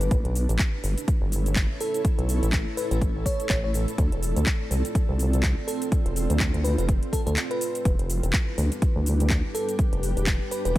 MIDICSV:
0, 0, Header, 1, 6, 480
1, 0, Start_track
1, 0, Tempo, 483871
1, 110, Time_signature, 4, 2, 24, 8
1, 10697, End_track
2, 0, Start_track
2, 0, Title_t, "FM electric piano"
2, 0, Program_c, 0, 5
2, 0, Note_on_c, 0, 71, 91
2, 165, Note_off_c, 0, 71, 0
2, 1791, Note_on_c, 0, 69, 91
2, 1998, Note_off_c, 0, 69, 0
2, 2750, Note_on_c, 0, 71, 87
2, 2839, Note_off_c, 0, 71, 0
2, 2889, Note_on_c, 0, 71, 78
2, 2954, Note_off_c, 0, 71, 0
2, 3232, Note_on_c, 0, 73, 92
2, 3439, Note_off_c, 0, 73, 0
2, 3472, Note_on_c, 0, 73, 93
2, 3559, Note_off_c, 0, 73, 0
2, 3610, Note_on_c, 0, 73, 77
2, 3674, Note_off_c, 0, 73, 0
2, 5629, Note_on_c, 0, 69, 92
2, 5837, Note_off_c, 0, 69, 0
2, 6588, Note_on_c, 0, 71, 87
2, 6678, Note_off_c, 0, 71, 0
2, 6728, Note_on_c, 0, 71, 78
2, 6794, Note_off_c, 0, 71, 0
2, 7068, Note_on_c, 0, 69, 89
2, 7158, Note_off_c, 0, 69, 0
2, 7205, Note_on_c, 0, 69, 76
2, 7272, Note_off_c, 0, 69, 0
2, 7447, Note_on_c, 0, 71, 91
2, 7845, Note_off_c, 0, 71, 0
2, 9469, Note_on_c, 0, 69, 96
2, 9677, Note_off_c, 0, 69, 0
2, 10429, Note_on_c, 0, 71, 89
2, 10518, Note_off_c, 0, 71, 0
2, 10567, Note_on_c, 0, 71, 80
2, 10633, Note_off_c, 0, 71, 0
2, 10697, End_track
3, 0, Start_track
3, 0, Title_t, "Ambient pad"
3, 0, Program_c, 1, 92
3, 0, Note_on_c, 1, 62, 96
3, 0, Note_on_c, 1, 67, 90
3, 0, Note_on_c, 1, 71, 73
3, 110, Note_off_c, 1, 62, 0
3, 112, Note_on_c, 1, 64, 94
3, 427, Note_on_c, 1, 69, 96
3, 670, Note_on_c, 1, 73, 73
3, 890, Note_off_c, 1, 67, 0
3, 998, Note_off_c, 1, 71, 0
3, 3950, Note_off_c, 1, 73, 0
3, 3951, Note_off_c, 1, 64, 0
3, 3953, Note_on_c, 1, 60, 86
3, 4185, Note_on_c, 1, 65, 76
3, 7789, Note_on_c, 1, 62, 94
3, 7791, Note_off_c, 1, 60, 0
3, 7791, Note_off_c, 1, 65, 0
3, 7899, Note_on_c, 1, 67, 90
3, 8446, Note_on_c, 1, 71, 83
3, 8648, Note_off_c, 1, 69, 0
3, 10697, Note_off_c, 1, 62, 0
3, 10697, Note_off_c, 1, 67, 0
3, 10697, Note_off_c, 1, 71, 0
3, 10697, End_track
4, 0, Start_track
4, 0, Title_t, "Analog synth pad"
4, 0, Program_c, 2, 89
4, 0, Note_on_c, 2, 71, 90
4, 110, Note_on_c, 2, 57, 84
4, 110, Note_on_c, 2, 61, 74
4, 3910, Note_off_c, 2, 71, 0
4, 3912, Note_off_c, 2, 61, 0
4, 3950, Note_on_c, 2, 74, 92
4, 3951, Note_on_c, 2, 65, 75
4, 7750, Note_off_c, 2, 57, 0
4, 7752, Note_off_c, 2, 65, 0
4, 7752, Note_off_c, 2, 74, 0
4, 7789, Note_on_c, 2, 64, 75
4, 7790, Note_on_c, 2, 55, 81
4, 7790, Note_on_c, 2, 71, 89
4, 9691, Note_off_c, 2, 64, 0
4, 9710, Note_on_c, 2, 62, 75
4, 10697, Note_off_c, 2, 55, 0
4, 10697, Note_off_c, 2, 62, 0
4, 10697, Note_off_c, 2, 71, 0
4, 10697, End_track
5, 0, Start_track
5, 0, Title_t, "Wobble bass"
5, 0, Program_c, 3, 39
5, 110, Note_on_c, 3, 33, 101
5, 226, Note_off_c, 3, 33, 0
5, 246, Note_on_c, 3, 35, 98
5, 465, Note_off_c, 3, 35, 0
5, 487, Note_on_c, 3, 33, 98
5, 573, Note_off_c, 3, 33, 0
5, 829, Note_on_c, 3, 31, 101
5, 946, Note_off_c, 3, 31, 0
5, 1207, Note_on_c, 3, 31, 97
5, 1665, Note_off_c, 3, 31, 0
5, 2167, Note_on_c, 3, 35, 101
5, 2386, Note_off_c, 3, 35, 0
5, 2406, Note_on_c, 3, 33, 99
5, 2625, Note_off_c, 3, 33, 0
5, 2887, Note_on_c, 3, 33, 100
5, 3213, Note_off_c, 3, 33, 0
5, 3470, Note_on_c, 3, 33, 96
5, 3826, Note_off_c, 3, 33, 0
5, 3951, Note_on_c, 3, 38, 102
5, 4066, Note_off_c, 3, 38, 0
5, 4089, Note_on_c, 3, 28, 104
5, 4306, Note_off_c, 3, 28, 0
5, 4328, Note_on_c, 3, 38, 100
5, 4414, Note_off_c, 3, 38, 0
5, 4670, Note_on_c, 3, 36, 101
5, 4786, Note_off_c, 3, 36, 0
5, 5049, Note_on_c, 3, 36, 97
5, 5506, Note_off_c, 3, 36, 0
5, 6008, Note_on_c, 3, 28, 101
5, 6226, Note_off_c, 3, 28, 0
5, 6248, Note_on_c, 3, 38, 98
5, 6466, Note_off_c, 3, 38, 0
5, 6488, Note_on_c, 3, 38, 98
5, 6706, Note_off_c, 3, 38, 0
5, 6728, Note_on_c, 3, 29, 98
5, 6946, Note_off_c, 3, 29, 0
5, 7207, Note_on_c, 3, 38, 97
5, 7310, Note_off_c, 3, 38, 0
5, 7790, Note_on_c, 3, 28, 98
5, 7906, Note_off_c, 3, 28, 0
5, 7928, Note_on_c, 3, 29, 100
5, 8146, Note_off_c, 3, 29, 0
5, 8167, Note_on_c, 3, 28, 98
5, 8253, Note_off_c, 3, 28, 0
5, 8509, Note_on_c, 3, 38, 99
5, 8626, Note_off_c, 3, 38, 0
5, 8887, Note_on_c, 3, 38, 100
5, 9345, Note_off_c, 3, 38, 0
5, 9847, Note_on_c, 3, 29, 100
5, 10065, Note_off_c, 3, 29, 0
5, 10087, Note_on_c, 3, 28, 99
5, 10306, Note_off_c, 3, 28, 0
5, 10567, Note_on_c, 3, 28, 98
5, 10697, Note_off_c, 3, 28, 0
5, 10697, End_track
6, 0, Start_track
6, 0, Title_t, "Drums"
6, 8, Note_on_c, 9, 42, 51
6, 15, Note_on_c, 9, 82, 46
6, 107, Note_off_c, 9, 42, 0
6, 110, Note_on_c, 9, 36, 120
6, 110, Note_on_c, 9, 42, 64
6, 114, Note_off_c, 9, 82, 0
6, 117, Note_on_c, 9, 82, 34
6, 209, Note_off_c, 9, 36, 0
6, 209, Note_off_c, 9, 42, 0
6, 216, Note_off_c, 9, 82, 0
6, 248, Note_on_c, 9, 42, 37
6, 347, Note_off_c, 9, 42, 0
6, 351, Note_on_c, 9, 46, 105
6, 358, Note_on_c, 9, 82, 78
6, 450, Note_off_c, 9, 46, 0
6, 457, Note_off_c, 9, 82, 0
6, 488, Note_on_c, 9, 42, 52
6, 496, Note_on_c, 9, 82, 45
6, 585, Note_on_c, 9, 39, 114
6, 587, Note_off_c, 9, 42, 0
6, 590, Note_on_c, 9, 36, 117
6, 590, Note_on_c, 9, 42, 65
6, 595, Note_off_c, 9, 82, 0
6, 597, Note_on_c, 9, 82, 34
6, 684, Note_off_c, 9, 39, 0
6, 689, Note_off_c, 9, 36, 0
6, 689, Note_off_c, 9, 42, 0
6, 696, Note_off_c, 9, 82, 0
6, 830, Note_on_c, 9, 46, 107
6, 837, Note_on_c, 9, 82, 79
6, 929, Note_off_c, 9, 46, 0
6, 936, Note_off_c, 9, 82, 0
6, 968, Note_on_c, 9, 42, 52
6, 975, Note_on_c, 9, 82, 46
6, 1067, Note_off_c, 9, 42, 0
6, 1070, Note_on_c, 9, 36, 116
6, 1071, Note_on_c, 9, 42, 65
6, 1074, Note_off_c, 9, 82, 0
6, 1078, Note_on_c, 9, 82, 35
6, 1169, Note_off_c, 9, 36, 0
6, 1170, Note_off_c, 9, 42, 0
6, 1177, Note_off_c, 9, 82, 0
6, 1310, Note_on_c, 9, 46, 104
6, 1317, Note_on_c, 9, 82, 80
6, 1409, Note_off_c, 9, 46, 0
6, 1417, Note_off_c, 9, 82, 0
6, 1449, Note_on_c, 9, 42, 51
6, 1456, Note_on_c, 9, 82, 45
6, 1546, Note_on_c, 9, 39, 113
6, 1548, Note_off_c, 9, 42, 0
6, 1550, Note_on_c, 9, 36, 121
6, 1551, Note_on_c, 9, 42, 64
6, 1555, Note_off_c, 9, 82, 0
6, 1558, Note_on_c, 9, 82, 34
6, 1645, Note_off_c, 9, 39, 0
6, 1649, Note_off_c, 9, 36, 0
6, 1650, Note_off_c, 9, 42, 0
6, 1657, Note_off_c, 9, 82, 0
6, 1790, Note_on_c, 9, 46, 104
6, 1797, Note_on_c, 9, 82, 78
6, 1889, Note_off_c, 9, 46, 0
6, 1897, Note_off_c, 9, 82, 0
6, 1928, Note_on_c, 9, 42, 53
6, 1935, Note_on_c, 9, 82, 47
6, 2027, Note_off_c, 9, 42, 0
6, 2030, Note_on_c, 9, 36, 115
6, 2030, Note_on_c, 9, 42, 67
6, 2034, Note_off_c, 9, 82, 0
6, 2038, Note_on_c, 9, 82, 35
6, 2129, Note_off_c, 9, 36, 0
6, 2130, Note_off_c, 9, 42, 0
6, 2137, Note_off_c, 9, 82, 0
6, 2169, Note_on_c, 9, 42, 38
6, 2268, Note_off_c, 9, 42, 0
6, 2270, Note_on_c, 9, 46, 98
6, 2277, Note_on_c, 9, 82, 81
6, 2369, Note_off_c, 9, 46, 0
6, 2376, Note_off_c, 9, 82, 0
6, 2409, Note_on_c, 9, 42, 53
6, 2416, Note_on_c, 9, 82, 47
6, 2506, Note_on_c, 9, 39, 115
6, 2508, Note_off_c, 9, 42, 0
6, 2510, Note_on_c, 9, 36, 118
6, 2511, Note_on_c, 9, 42, 68
6, 2515, Note_off_c, 9, 82, 0
6, 2518, Note_on_c, 9, 82, 36
6, 2605, Note_off_c, 9, 39, 0
6, 2609, Note_off_c, 9, 36, 0
6, 2610, Note_off_c, 9, 42, 0
6, 2617, Note_off_c, 9, 82, 0
6, 2751, Note_on_c, 9, 46, 103
6, 2758, Note_on_c, 9, 82, 82
6, 2850, Note_off_c, 9, 46, 0
6, 2857, Note_off_c, 9, 82, 0
6, 2889, Note_on_c, 9, 42, 53
6, 2896, Note_on_c, 9, 82, 47
6, 2988, Note_off_c, 9, 42, 0
6, 2990, Note_on_c, 9, 36, 117
6, 2992, Note_on_c, 9, 42, 65
6, 2996, Note_off_c, 9, 82, 0
6, 2999, Note_on_c, 9, 82, 35
6, 3090, Note_off_c, 9, 36, 0
6, 3091, Note_off_c, 9, 42, 0
6, 3099, Note_off_c, 9, 82, 0
6, 3230, Note_on_c, 9, 36, 57
6, 3232, Note_on_c, 9, 46, 105
6, 3239, Note_on_c, 9, 82, 81
6, 3330, Note_off_c, 9, 36, 0
6, 3331, Note_off_c, 9, 46, 0
6, 3338, Note_off_c, 9, 82, 0
6, 3370, Note_on_c, 9, 42, 53
6, 3377, Note_on_c, 9, 82, 46
6, 3466, Note_on_c, 9, 39, 116
6, 3469, Note_off_c, 9, 42, 0
6, 3470, Note_on_c, 9, 36, 117
6, 3471, Note_on_c, 9, 42, 68
6, 3476, Note_off_c, 9, 82, 0
6, 3479, Note_on_c, 9, 82, 36
6, 3565, Note_off_c, 9, 39, 0
6, 3570, Note_off_c, 9, 36, 0
6, 3571, Note_off_c, 9, 42, 0
6, 3578, Note_off_c, 9, 82, 0
6, 3712, Note_on_c, 9, 46, 99
6, 3719, Note_on_c, 9, 82, 79
6, 3811, Note_off_c, 9, 46, 0
6, 3818, Note_off_c, 9, 82, 0
6, 3850, Note_on_c, 9, 42, 53
6, 3857, Note_on_c, 9, 82, 48
6, 3949, Note_off_c, 9, 42, 0
6, 3951, Note_on_c, 9, 36, 112
6, 3952, Note_on_c, 9, 42, 70
6, 3956, Note_off_c, 9, 82, 0
6, 3959, Note_on_c, 9, 82, 36
6, 4050, Note_off_c, 9, 36, 0
6, 4051, Note_off_c, 9, 42, 0
6, 4058, Note_off_c, 9, 82, 0
6, 4090, Note_on_c, 9, 42, 39
6, 4190, Note_off_c, 9, 42, 0
6, 4192, Note_on_c, 9, 46, 101
6, 4199, Note_on_c, 9, 82, 82
6, 4291, Note_off_c, 9, 46, 0
6, 4298, Note_off_c, 9, 82, 0
6, 4330, Note_on_c, 9, 42, 54
6, 4337, Note_on_c, 9, 82, 48
6, 4427, Note_on_c, 9, 39, 118
6, 4429, Note_off_c, 9, 42, 0
6, 4431, Note_on_c, 9, 36, 111
6, 4432, Note_on_c, 9, 42, 70
6, 4436, Note_off_c, 9, 82, 0
6, 4439, Note_on_c, 9, 82, 35
6, 4526, Note_off_c, 9, 39, 0
6, 4530, Note_off_c, 9, 36, 0
6, 4531, Note_off_c, 9, 42, 0
6, 4538, Note_off_c, 9, 82, 0
6, 4671, Note_on_c, 9, 46, 101
6, 4679, Note_on_c, 9, 82, 84
6, 4771, Note_off_c, 9, 46, 0
6, 4778, Note_off_c, 9, 82, 0
6, 4810, Note_on_c, 9, 42, 56
6, 4817, Note_on_c, 9, 82, 47
6, 4909, Note_off_c, 9, 42, 0
6, 4911, Note_on_c, 9, 36, 113
6, 4912, Note_on_c, 9, 42, 71
6, 4916, Note_off_c, 9, 82, 0
6, 4920, Note_on_c, 9, 82, 36
6, 5010, Note_off_c, 9, 36, 0
6, 5012, Note_off_c, 9, 42, 0
6, 5019, Note_off_c, 9, 82, 0
6, 5152, Note_on_c, 9, 46, 103
6, 5159, Note_on_c, 9, 82, 85
6, 5251, Note_off_c, 9, 46, 0
6, 5258, Note_off_c, 9, 82, 0
6, 5291, Note_on_c, 9, 42, 56
6, 5298, Note_on_c, 9, 82, 47
6, 5388, Note_on_c, 9, 39, 117
6, 5390, Note_off_c, 9, 42, 0
6, 5391, Note_on_c, 9, 36, 116
6, 5393, Note_on_c, 9, 42, 69
6, 5397, Note_off_c, 9, 82, 0
6, 5400, Note_on_c, 9, 82, 36
6, 5487, Note_off_c, 9, 39, 0
6, 5490, Note_off_c, 9, 36, 0
6, 5492, Note_off_c, 9, 42, 0
6, 5499, Note_off_c, 9, 82, 0
6, 5632, Note_on_c, 9, 46, 96
6, 5640, Note_on_c, 9, 82, 82
6, 5731, Note_off_c, 9, 46, 0
6, 5739, Note_off_c, 9, 82, 0
6, 5771, Note_on_c, 9, 42, 55
6, 5778, Note_on_c, 9, 82, 49
6, 5870, Note_off_c, 9, 42, 0
6, 5871, Note_on_c, 9, 36, 118
6, 5872, Note_on_c, 9, 42, 69
6, 5877, Note_off_c, 9, 82, 0
6, 5879, Note_on_c, 9, 82, 35
6, 5970, Note_off_c, 9, 36, 0
6, 5971, Note_off_c, 9, 42, 0
6, 5979, Note_off_c, 9, 82, 0
6, 6010, Note_on_c, 9, 42, 40
6, 6109, Note_off_c, 9, 42, 0
6, 6112, Note_on_c, 9, 46, 102
6, 6119, Note_on_c, 9, 82, 80
6, 6211, Note_off_c, 9, 46, 0
6, 6218, Note_off_c, 9, 82, 0
6, 6250, Note_on_c, 9, 42, 56
6, 6257, Note_on_c, 9, 82, 47
6, 6347, Note_on_c, 9, 39, 123
6, 6349, Note_off_c, 9, 42, 0
6, 6351, Note_on_c, 9, 36, 115
6, 6352, Note_on_c, 9, 42, 70
6, 6356, Note_off_c, 9, 82, 0
6, 6359, Note_on_c, 9, 82, 36
6, 6446, Note_off_c, 9, 39, 0
6, 6450, Note_off_c, 9, 36, 0
6, 6451, Note_off_c, 9, 42, 0
6, 6458, Note_off_c, 9, 82, 0
6, 6490, Note_on_c, 9, 42, 41
6, 6590, Note_off_c, 9, 42, 0
6, 6592, Note_on_c, 9, 46, 101
6, 6599, Note_on_c, 9, 82, 82
6, 6691, Note_off_c, 9, 46, 0
6, 6698, Note_off_c, 9, 82, 0
6, 6730, Note_on_c, 9, 42, 57
6, 6737, Note_on_c, 9, 82, 48
6, 6830, Note_off_c, 9, 42, 0
6, 6831, Note_on_c, 9, 36, 116
6, 6831, Note_on_c, 9, 42, 69
6, 6837, Note_off_c, 9, 82, 0
6, 6839, Note_on_c, 9, 82, 34
6, 6930, Note_off_c, 9, 36, 0
6, 6931, Note_off_c, 9, 42, 0
6, 6938, Note_off_c, 9, 82, 0
6, 6970, Note_on_c, 9, 42, 39
6, 7069, Note_off_c, 9, 42, 0
6, 7071, Note_on_c, 9, 36, 59
6, 7072, Note_on_c, 9, 46, 104
6, 7079, Note_on_c, 9, 82, 82
6, 7170, Note_off_c, 9, 36, 0
6, 7171, Note_off_c, 9, 46, 0
6, 7178, Note_off_c, 9, 82, 0
6, 7209, Note_on_c, 9, 42, 55
6, 7217, Note_on_c, 9, 82, 48
6, 7306, Note_on_c, 9, 39, 121
6, 7308, Note_off_c, 9, 42, 0
6, 7311, Note_on_c, 9, 42, 70
6, 7316, Note_off_c, 9, 82, 0
6, 7318, Note_on_c, 9, 82, 35
6, 7405, Note_off_c, 9, 39, 0
6, 7410, Note_off_c, 9, 42, 0
6, 7417, Note_off_c, 9, 82, 0
6, 7449, Note_on_c, 9, 42, 38
6, 7548, Note_off_c, 9, 42, 0
6, 7550, Note_on_c, 9, 46, 100
6, 7557, Note_on_c, 9, 82, 78
6, 7649, Note_off_c, 9, 46, 0
6, 7657, Note_off_c, 9, 82, 0
6, 7689, Note_on_c, 9, 42, 56
6, 7696, Note_on_c, 9, 82, 47
6, 7788, Note_off_c, 9, 42, 0
6, 7790, Note_on_c, 9, 36, 118
6, 7791, Note_on_c, 9, 42, 69
6, 7796, Note_off_c, 9, 82, 0
6, 7798, Note_on_c, 9, 82, 35
6, 7890, Note_off_c, 9, 36, 0
6, 7890, Note_off_c, 9, 42, 0
6, 7897, Note_off_c, 9, 82, 0
6, 7929, Note_on_c, 9, 42, 40
6, 8028, Note_off_c, 9, 42, 0
6, 8031, Note_on_c, 9, 46, 105
6, 8038, Note_on_c, 9, 82, 78
6, 8130, Note_off_c, 9, 46, 0
6, 8137, Note_off_c, 9, 82, 0
6, 8168, Note_on_c, 9, 42, 55
6, 8176, Note_on_c, 9, 82, 45
6, 8265, Note_on_c, 9, 39, 124
6, 8268, Note_off_c, 9, 42, 0
6, 8270, Note_on_c, 9, 36, 118
6, 8270, Note_on_c, 9, 42, 70
6, 8275, Note_off_c, 9, 82, 0
6, 8277, Note_on_c, 9, 82, 35
6, 8364, Note_off_c, 9, 39, 0
6, 8369, Note_off_c, 9, 36, 0
6, 8369, Note_off_c, 9, 42, 0
6, 8376, Note_off_c, 9, 82, 0
6, 8510, Note_on_c, 9, 46, 107
6, 8517, Note_on_c, 9, 82, 77
6, 8609, Note_off_c, 9, 46, 0
6, 8617, Note_off_c, 9, 82, 0
6, 8648, Note_on_c, 9, 42, 57
6, 8656, Note_on_c, 9, 82, 46
6, 8748, Note_off_c, 9, 42, 0
6, 8750, Note_on_c, 9, 36, 121
6, 8750, Note_on_c, 9, 42, 69
6, 8755, Note_off_c, 9, 82, 0
6, 8757, Note_on_c, 9, 82, 35
6, 8849, Note_off_c, 9, 36, 0
6, 8849, Note_off_c, 9, 42, 0
6, 8856, Note_off_c, 9, 82, 0
6, 8990, Note_on_c, 9, 46, 105
6, 8997, Note_on_c, 9, 82, 80
6, 9089, Note_off_c, 9, 46, 0
6, 9096, Note_off_c, 9, 82, 0
6, 9128, Note_on_c, 9, 42, 55
6, 9136, Note_on_c, 9, 82, 45
6, 9225, Note_on_c, 9, 39, 127
6, 9227, Note_off_c, 9, 42, 0
6, 9230, Note_on_c, 9, 36, 122
6, 9230, Note_on_c, 9, 42, 68
6, 9235, Note_off_c, 9, 82, 0
6, 9237, Note_on_c, 9, 82, 35
6, 9324, Note_off_c, 9, 39, 0
6, 9329, Note_off_c, 9, 36, 0
6, 9329, Note_off_c, 9, 42, 0
6, 9336, Note_off_c, 9, 82, 0
6, 9470, Note_on_c, 9, 46, 103
6, 9477, Note_on_c, 9, 82, 76
6, 9569, Note_off_c, 9, 46, 0
6, 9576, Note_off_c, 9, 82, 0
6, 9609, Note_on_c, 9, 42, 56
6, 9616, Note_on_c, 9, 82, 46
6, 9708, Note_off_c, 9, 42, 0
6, 9710, Note_on_c, 9, 36, 124
6, 9710, Note_on_c, 9, 42, 69
6, 9715, Note_off_c, 9, 82, 0
6, 9718, Note_on_c, 9, 82, 34
6, 9809, Note_off_c, 9, 36, 0
6, 9809, Note_off_c, 9, 42, 0
6, 9817, Note_off_c, 9, 82, 0
6, 9848, Note_on_c, 9, 42, 39
6, 9947, Note_off_c, 9, 42, 0
6, 9950, Note_on_c, 9, 46, 111
6, 9957, Note_on_c, 9, 82, 72
6, 10049, Note_off_c, 9, 46, 0
6, 10057, Note_off_c, 9, 82, 0
6, 10089, Note_on_c, 9, 42, 54
6, 10096, Note_on_c, 9, 82, 43
6, 10185, Note_on_c, 9, 39, 127
6, 10188, Note_off_c, 9, 42, 0
6, 10190, Note_on_c, 9, 36, 121
6, 10190, Note_on_c, 9, 42, 68
6, 10195, Note_off_c, 9, 82, 0
6, 10197, Note_on_c, 9, 82, 33
6, 10284, Note_off_c, 9, 39, 0
6, 10289, Note_off_c, 9, 36, 0
6, 10289, Note_off_c, 9, 42, 0
6, 10296, Note_off_c, 9, 82, 0
6, 10430, Note_on_c, 9, 46, 108
6, 10437, Note_on_c, 9, 82, 77
6, 10529, Note_off_c, 9, 46, 0
6, 10536, Note_off_c, 9, 82, 0
6, 10568, Note_on_c, 9, 42, 55
6, 10575, Note_on_c, 9, 82, 44
6, 10667, Note_off_c, 9, 42, 0
6, 10675, Note_off_c, 9, 82, 0
6, 10697, End_track
0, 0, End_of_file